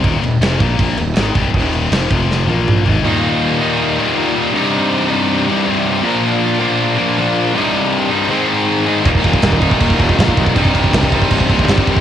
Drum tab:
CC |x-x-x-x-x-x-x-x-|x-x-x-x---------|----------------|----------------|
SD |----o-------o---|----o---o-------|----------------|----------------|
T1 |----------------|----------o-----|----------------|----------------|
T2 |----------------|------------o---|----------------|----------------|
FT |----------------|--------------o-|----------------|----------------|
BD |o-----o-o-----o-|o-----o---------|----------------|----------------|

CC |----------------|----------------|x-x-x-x-x-x-x-x-|x-x-x-x-x-x-x-x-|
SD |----------------|----------------|----o-------o---|----o-------o---|
T1 |----------------|----------------|----------------|----------------|
T2 |----------------|----------------|----------------|----------------|
FT |----------------|----------------|----------------|----------------|
BD |----------------|----------------|oooooooooooooooo|oooooooooooooooo|